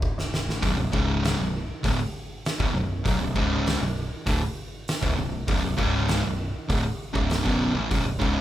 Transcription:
Already playing: C#1
0.02 kick
0.17 B0, snare
0.34 snare
0.47 A1, snare
0.62 B0 B1 F#2, kick, open hi-hat
0.76 B0 B1 F#2
0.92 C#1 C#2 G#2 C#3, kick
1.24 snare, open hi-hat
1.38 B0 B1 F#2
1.83 D1 D2 A2, kick, open hi-hat
2.45 snare, open hi-hat
2.59 C#1 C#2 G#2, kick
2.73 B0 B1 F#2
3.04 B0 B1 F#2, kick, open hi-hat
3.19 B0 B1 F#2
3.35 C#1 C#2 G#2 C#3, kick
3.67 snare, open hi-hat
3.79 B0 B1 F#2
4.26 D1 D2 A2, kick, open hi-hat
4.88 snare, open hi-hat
5.01 C#1 C#2 G#2, kick
5.17 B0 B1 F#2
5.47 B0 B1 F#2, kick, open hi-hat
5.64 B0 B1 F#2
5.77 C#1 C#2 G#2 C#3, kick
6.08 snare, open hi-hat
6.23 B0 B1 F#2
6.68 D1 D2 A2, kick, open hi-hat
7.13 C#1 C#2 G#2 C#3, kick
7.30 snare, open hi-hat
7.44 B0 B1 F#2 B2, kick
7.75 A1 A2 E3
7.90 B0 B1 F#2, kick, open hi-hat
8.05 B0 B1 F#2
8.19 C#1 C#2 G#2 C#3, kick

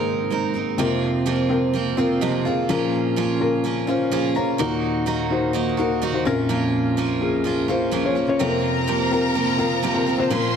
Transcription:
Already playing: G#2 D#3 G#3 A#3 C4 D#4 G#4 A#4 C5
0.30 G#3 C4 D#4 A#4
0.54 C4 D#4 A#4
0.78 F2 C3 F3 A#3 C4 F4 A#4
1.26 F2 C3 F3 A#3 C4 F4
1.49 C4 F4 A#4
1.73 F3 A#3 C4 F4
1.97 F3 A#3 C4 F4 A#4
2.21 F2 C3 F3 A#3 C4 F4 D#5
2.45 F3 A#3 C4 F4 G#4 F5
2.69 A#2 F3 A#3 C#4 F4 A#4
3.16 A#2 F3 A#3 C#4 F4
3.40 C#4 F4 A#4
3.64 F3 A#3 C#4 F4
3.87 A#3 C#4 F4 C5
4.11 A#2 F3 A#3 C#4 F4 G#4 F5
4.35 A#3 C#4 F4 C#5 A#5
4.58 D#2 A#2 D#3 A#3 D#4 F#4 A#4
5.06 D#3 A#3 D#4 F#4
5.30 D#4 F#4 C5
5.53 D#3 A#3 D#4 F#4
5.77 A#3 D#4 F#4 A#4
6.02 D#3 A#3 D#4 F#4
6.13 D#4 F#4 C5
6.25 A#1 F2 A#3 C#4 F4 A#4
6.49 A#2 F3 A#3 C#4 F4
6.97 A#2 F3 A#3 C#4 F4
7.21 C#4 F4 G#4
7.44 F3 A#3 C#4 F4
7.68 A#3 C#4 F4 C5
7.91 A#2 F3 A#3 C#4 F4
8.04 C#4 F4 C#5
8.15 A#3 C#4 F4
8.28 C#4 F4 C#5
8.39 F2 C3 F3 A#3 C4 F4 A4 A#4 A#5
8.47 A#4
8.87 F2 C3 F3 A#3 C4 F4
9.11 C4 F4 A#4
9.34 F3 A#3 C4 F4
9.58 F3 A#3 C4 F4 A#4
9.83 F2 C3 F3 A#3 C4 F4
9.94 C4 F4 A#4
10.07 F3 A#3 C4 F4
10.18 C4 F4 C5
10.30 A#2 F3 A#3 C#4 F4 A#4 C5 C6

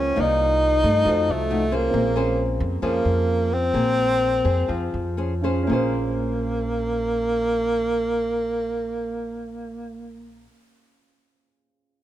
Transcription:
Already playing: C#2 C#3 F3 A#3 C4 F4 G#4 A#4 C5 D#5
0.00 C#4
0.14 C2 C3 F3 A#3 D#4 F4
0.18 D#4 A#4 D5
0.83 G2 A3 D#4
1.02 F2 F3 D#4 F#4
1.06 A4 C5
1.28 C2 A3
1.50 A3 D#4 F#4
1.71 A#3 C#4 G#4 C5
1.90 A#1 A#3 C4 F4 G#4
1.96 C5
2.16 C#4 G#4 C5
2.60 F2
2.82 F2 F3 A#3 C#4 G#4 C5
3.05 F2
3.53 C4
3.74 A#1 A#3 G#4 C5
4.45 F2 G#4 C5
4.68 F2 F3
4.94 F2
5.17 C#4 G#4 C5
5.41 C#4 F4 G#4 C5
5.63 C#4
5.67 A#1 A#3 C#4 F4 G#4
5.71 A#3 G#4 C5

